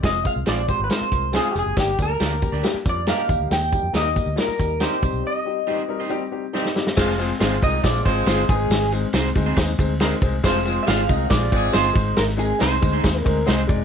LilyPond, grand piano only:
\new Staff \with { instrumentName = "Grand piano" } { \time 4/4 \key f \dorian \tempo 4 = 138 << { r1 | r1 | r1 | r1 |
r1 | r2. ees''4 | r1 | r1 | } \\ { <aes c' f' aes'>8 <aes c' f' aes'>8 <aes c' f' aes'>8 <aes c' f' g'>8 <aes c' f' bes'>8 <aes c' f' bes'>8 <aes c' f' aes'>8 <aes c' f' g'>8 | <g bes d' g'>8 <g bes d' bes'>8 <g bes d' bes'>8 <g bes d' g'>8 <g bes d' g'>8 <g bes d' f'>8 <g bes d' g'>8 <g bes ees' g'>8~ | <g bes ees' g'>8 <g bes ees' g'>8 <g bes ees' g'>8 <g bes ees' g'>8 <g bes ees' f'>8 <g bes ees' g'>8 <g bes ees' g'>8 <g c' ees' g'>8~ | <g c' ees' g'>8 <g c' ees' g'>8 <g c' ees' g'>8 <g c' ees' bes'>8 <g c' ees' g'>8 <g c' ees' g'>8 <g c' ees' g'>8 <g c' ees' g'>8 |
<aes c' f' aes' c''>8 <aes c' f' aes' c''>8 <aes c' f' aes' c''>8 <aes c' f' aes' c''>8 <aes c' f' aes' c''>8 <aes c' f' aes' c''>8 <aes c' f' aes' c''>8 <aes c' ees' aes' b' c''>8~ | <aes c' ees' aes' b' c''>8 <aes c' ees' aes' c''>8 <aes c' ees' aes' c''>8 <aes c' ees' aes' c''>8 <aes c' ees' aes' c''>8 <aes c' ees' aes' c''>8 <aes c' ees' aes' bes'>8 <aes c' ees' aes' c''>8 | <aes c' f' aes' c''>8 <aes c' f' aes' c''>8 <aes c' f' aes' d''>8 <aes c' f' aes' ees''>8 <aes c' f' aes' c''>8 <aes c' f' aes' c''>8 <aes c' f' aes' ees''>8 <aes c' ees' aes' c''>8~ | <aes c' ees' aes' c''>8 <aes c' ees' aes' bes'>8 <aes c' ees' aes' c''>8 <aes c' ees' aes' c''>8 <aes c' ees' aes' c''>8 <aes c' ees' aes' c''>8 <aes c' ees' aes' c''>8 <aes c' ees' aes' d''>8 | } >> }